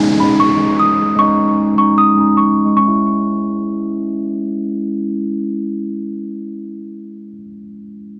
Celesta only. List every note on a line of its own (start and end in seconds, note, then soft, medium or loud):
0.20 0.36 B5 medium
0.40 0.77 C#6 medium
0.79 1.17 D#6 medium
1.19 1.56 C#6 loud
1.78 1.94 C#6 medium
1.98 2.35 D#6 medium
2.37 2.74 C#6 medium
2.77 3.91 C#6 medium